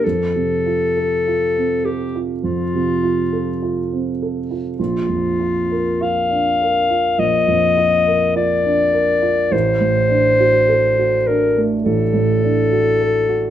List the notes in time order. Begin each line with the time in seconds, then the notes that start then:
0.04 F2 A4
0.36 C3
0.66 F4
0.97 A4
1.28 F4
1.56 C4
1.85 G4 A4
2.15 F4
2.43 F2 F4
2.75 C3
3.03 F4
3.32 A4
3.62 F4
3.93 C4
4.22 A4
4.51 F4
4.78 A#1 F4
5.09 F2
5.39 F4
5.71 A#4
6.01 F4 F5
6.30 D4
6.62 A#4
6.90 F4
7.18 A#1 D#5
7.48 F2
7.77 F4
8.07 A#4
8.36 F4 D5
8.64 D4
8.93 A#4
9.22 F4
9.51 A1 C5
9.80 A2
10.09 D4
10.40 F#4
10.69 A4
10.99 F#4
11.27 D4 A#4
11.57 A3
11.84 A1 A4
12.13 A2
12.43 D4
12.72 F#4
13.00 A4
13.29 F#4